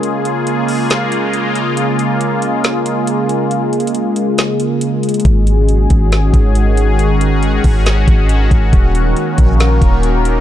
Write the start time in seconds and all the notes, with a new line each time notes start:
Already playing: C#3 G#3 A#3 F4 G#4
0.03 closed hi-hat
0.25 closed hi-hat
0.47 closed hi-hat
0.68 open hi-hat
0.90 snare, closed hi-hat
1.12 closed hi-hat
1.33 closed hi-hat
1.55 closed hi-hat
1.77 closed hi-hat
1.99 closed hi-hat
2.21 closed hi-hat
2.42 closed hi-hat
2.64 snare, closed hi-hat
2.86 closed hi-hat
3.07 closed hi-hat
3.29 closed hi-hat
3.51 closed hi-hat
3.73 closed hi-hat
3.80 closed hi-hat
3.87 closed hi-hat
3.95 closed hi-hat
4.16 closed hi-hat
4.38 snare, closed hi-hat
4.60 closed hi-hat
4.81 closed hi-hat
5.03 closed hi-hat
5.09 closed hi-hat
5.14 closed hi-hat
5.20 closed hi-hat
5.25 G#1 D#3 C#4 F#4 G#4 F#5, kick, closed hi-hat
5.47 closed hi-hat
5.69 closed hi-hat
5.90 G#1, kick, closed hi-hat
6.12 snare, closed hi-hat
6.34 G#1, kick, closed hi-hat
6.55 closed hi-hat
6.77 closed hi-hat
6.99 closed hi-hat
7.21 closed hi-hat
7.43 closed hi-hat
7.64 G#1, kick, open hi-hat
7.86 snare, closed hi-hat
8.08 G#1, kick, closed hi-hat
8.29 closed hi-hat
8.51 G#1, kick, closed hi-hat
8.73 D#1 D#3 A#3 D#4 A#4 C#5 F#5, kick, closed hi-hat
8.95 closed hi-hat
9.17 closed hi-hat
9.38 A#1, kick, closed hi-hat
9.60 snare, closed hi-hat
9.82 D#1, kick, closed hi-hat
10.03 closed hi-hat
10.25 closed hi-hat